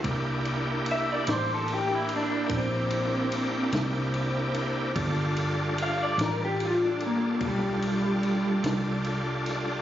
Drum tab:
RD |xxxxxxxxxxxx|xxxxxxxxxxxx|
SD |---o-----o--|---o-----o-o|
BD |o-----o-----|o-----o-----|